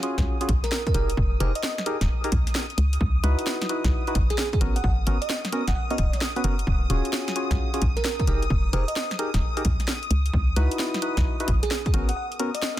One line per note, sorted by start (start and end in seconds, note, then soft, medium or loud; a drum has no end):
0.00 0.37 C#4 medium
0.00 0.37 F4 medium
0.00 0.37 F#4 medium
0.00 0.37 G#4 medium
0.00 12.80 D#6 medium
0.00 closed hi-hat loud
0.18 0.24 C#2 medium
0.18 kick medium
0.18 snare medium
0.18 closed hi-hat medium
0.41 0.51 C#4 medium
0.41 0.51 F4 medium
0.41 0.51 F#4 medium
0.41 0.51 G#4 loud
0.41 closed hi-hat soft
0.49 0.61 A#1 medium
0.49 kick loud
0.49 closed hi-hat loud
0.64 0.70 A#4 medium
0.64 snare soft
0.64 closed hi-hat medium
0.72 0.81 A#4 medium
0.72 snare loud
0.87 0.92 A#4 medium
0.87 kick loud
0.87 closed hi-hat soft
0.94 1.15 F1 medium
0.94 1.11 D#4 medium
0.94 1.11 G4 medium
0.94 1.11 G#4 medium
0.94 1.39 A#4 medium
0.94 1.11 A#4 medium
0.94 closed hi-hat loud
1.10 closed hi-hat medium
1.17 1.37 F1 loud
1.17 kick loud
1.40 1.53 F1 loud
1.40 1.51 D#4 loud
1.40 1.51 G4 medium
1.40 1.51 G#4 medium
1.40 1.51 A#4 loud
1.40 1.52 C5 medium
1.40 closed hi-hat loud
1.55 1.86 D#5 medium
1.55 closed hi-hat medium
1.63 snare loud
1.78 snare medium
1.78 closed hi-hat medium
1.86 1.97 D#4 loud
1.86 1.97 G4 medium
1.86 1.97 G#4 medium
1.86 1.97 A#4 loud
1.86 closed hi-hat loud
2.01 2.08 D#1 medium
2.01 kick medium
2.01 snare medium
2.01 closed hi-hat medium
2.24 2.30 D#4 loud
2.24 2.30 G4 medium
2.24 2.30 G#4 medium
2.24 2.30 A#4 loud
2.24 closed hi-hat medium
2.32 2.44 C2 medium
2.32 kick loud
2.32 closed hi-hat loud
2.47 snare soft
2.47 closed hi-hat medium
2.55 snare loud
2.70 closed hi-hat soft
2.78 2.98 C#2 medium
2.78 closed hi-hat loud
2.93 closed hi-hat medium
3.01 3.21 C#2 loud
3.01 kick loud
3.24 3.36 C#2 loud
3.24 3.68 D#4 medium
3.24 3.67 E4 medium
3.24 3.67 F#4 medium
3.24 3.68 B4 loud
3.24 closed hi-hat loud
3.39 closed hi-hat medium
3.47 snare loud
3.62 snare medium
3.62 closed hi-hat medium
3.69 4.04 D#4 medium
3.69 4.04 E4 medium
3.69 4.04 F#4 medium
3.69 4.04 B4 medium
3.69 closed hi-hat loud
3.84 3.91 B1 medium
3.84 kick medium
3.84 snare medium
3.84 closed hi-hat medium
4.07 4.18 D#4 medium
4.07 4.18 E4 medium
4.07 4.18 F#4 medium
4.07 4.18 B4 loud
4.07 closed hi-hat soft
4.15 4.27 G#1 medium
4.15 kick loud
4.15 closed hi-hat loud
4.30 4.37 G#4 medium
4.30 snare soft
4.30 closed hi-hat medium
4.38 4.48 G#4 medium
4.38 snare loud
4.53 4.58 G#4 medium
4.53 kick loud
4.53 closed hi-hat soft
4.61 4.81 G#1 medium
4.61 4.77 B3 medium
4.61 4.77 C#4 medium
4.61 4.77 F#4 medium
4.61 4.77 A#4 medium
4.61 closed hi-hat loud
4.76 4.81 F#5 medium
4.76 closed hi-hat medium
4.84 5.04 G#1 loud
4.84 4.93 F#5 medium
4.84 kick loud
5.07 5.19 G#1 loud
5.07 5.18 B3 medium
5.07 5.18 C#4 medium
5.07 5.18 F#4 medium
5.07 5.18 A#4 loud
5.07 closed hi-hat loud
5.22 5.65 D#5 medium
5.22 closed hi-hat medium
5.30 snare loud
5.45 snare medium
5.45 closed hi-hat medium
5.52 5.63 B3 medium
5.52 5.63 C#4 medium
5.52 5.63 F#4 medium
5.52 5.63 A#4 loud
5.52 closed hi-hat loud
5.68 5.74 F#1 medium
5.68 5.73 F#5 medium
5.68 kick medium
5.68 snare medium
5.68 closed hi-hat medium
5.75 5.85 F#5 medium
5.90 5.96 B3 loud
5.90 5.96 C#4 medium
5.90 5.96 F#4 medium
5.90 5.96 A#4 loud
5.90 6.21 D#5 medium
5.90 closed hi-hat medium
5.98 6.11 D#1 medium
5.98 kick loud
5.98 closed hi-hat loud
6.13 snare soft
6.13 closed hi-hat medium
6.21 snare loud
6.36 6.42 B3 medium
6.36 6.42 C#4 medium
6.36 6.42 F#4 medium
6.36 6.42 B4 medium
6.36 closed hi-hat soft
6.44 6.64 F#1 medium
6.44 6.55 B3 medium
6.44 6.55 C#4 medium
6.44 6.55 F#4 medium
6.44 6.55 A#4 loud
6.44 closed hi-hat loud
6.59 closed hi-hat medium
6.67 6.87 D#1 loud
6.67 kick loud
6.90 7.02 D#1 loud
6.90 7.34 C#4 medium
6.90 7.34 F4 medium
6.90 7.34 F#4 medium
6.90 7.34 G#4 loud
6.90 closed hi-hat loud
7.05 closed hi-hat medium
7.13 snare loud
7.28 snare medium
7.28 closed hi-hat medium
7.36 7.70 C#4 medium
7.36 7.70 F4 medium
7.36 7.70 F#4 medium
7.36 7.70 G#4 medium
7.36 closed hi-hat loud
7.51 7.57 C#2 medium
7.51 kick medium
7.51 snare medium
7.51 closed hi-hat medium
7.74 7.84 C#4 medium
7.74 7.84 F4 medium
7.74 7.84 F#4 medium
7.74 7.84 G#4 loud
7.74 closed hi-hat medium
7.82 7.94 A#1 medium
7.82 kick loud
7.82 closed hi-hat loud
7.97 8.03 A#4 medium
7.97 snare soft
7.97 closed hi-hat medium
8.04 8.14 A#4 medium
8.04 snare loud
8.19 8.24 A#4 medium
8.19 kick loud
8.19 closed hi-hat soft
8.27 8.47 F1 medium
8.27 8.44 D#4 medium
8.27 8.44 G4 medium
8.27 8.44 G#4 medium
8.27 8.44 A#4 medium
8.27 8.72 A#4 medium
8.27 closed hi-hat loud
8.43 closed hi-hat medium
8.50 8.70 F1 loud
8.50 kick loud
8.73 8.86 F1 loud
8.73 8.84 D#4 medium
8.73 8.84 G4 medium
8.73 8.84 G#4 medium
8.73 8.84 A#4 loud
8.73 8.85 C5 medium
8.73 closed hi-hat loud
8.88 9.19 D#5 loud
8.88 closed hi-hat medium
8.96 snare loud
9.11 snare medium
9.11 closed hi-hat medium
9.19 9.30 D#4 medium
9.19 9.30 G4 medium
9.19 9.30 G#4 medium
9.19 9.30 A#4 loud
9.19 closed hi-hat loud
9.34 9.40 D#1 medium
9.34 kick medium
9.34 snare medium
9.34 closed hi-hat medium
9.57 9.63 D#4 loud
9.57 9.63 G4 medium
9.57 9.63 G#4 medium
9.57 9.63 A#4 loud
9.57 closed hi-hat medium
9.65 9.77 C2 medium
9.65 kick loud
9.65 closed hi-hat loud
9.80 snare soft
9.80 closed hi-hat medium
9.88 snare loud
10.03 closed hi-hat soft
10.11 10.31 C#2 medium
10.11 closed hi-hat loud
10.26 closed hi-hat medium
10.33 10.54 C#2 loud
10.33 kick loud
10.56 10.69 C#2 loud
10.56 11.00 D#4 medium
10.56 11.00 E4 medium
10.56 11.00 F#4 medium
10.56 11.00 B4 loud
10.56 closed hi-hat loud
10.71 closed hi-hat medium
10.79 snare loud
10.94 snare medium
10.94 closed hi-hat medium
11.02 11.37 D#4 medium
11.02 11.37 E4 medium
11.02 11.37 F#4 medium
11.02 11.37 B4 medium
11.02 closed hi-hat loud
11.17 11.24 B1 medium
11.17 kick medium
11.17 snare medium
11.17 closed hi-hat medium
11.40 11.50 D#4 medium
11.40 11.50 E4 medium
11.40 11.50 F#4 medium
11.40 11.50 B4 loud
11.40 closed hi-hat medium
11.48 11.60 G#1 medium
11.48 kick loud
11.48 closed hi-hat loud
11.63 11.69 G#4 loud
11.63 snare soft
11.63 closed hi-hat medium
11.71 11.81 G#4 medium
11.71 snare loud
11.86 11.91 G#4 medium
11.86 kick loud
11.86 closed hi-hat soft
11.94 12.14 G#1 medium
11.94 12.10 B3 medium
11.94 12.10 C#4 medium
11.94 12.10 F#4 medium
11.94 12.10 A#4 medium
11.94 closed hi-hat loud
12.09 12.14 F#5 medium
12.09 closed hi-hat medium
12.16 12.26 F#5 medium
12.32 closed hi-hat soft
12.39 12.50 B3 medium
12.39 12.50 C#4 medium
12.39 12.50 F#4 medium
12.39 12.50 A#4 loud
12.39 closed hi-hat loud
12.55 12.80 D#5 medium
12.55 closed hi-hat medium
12.62 snare loud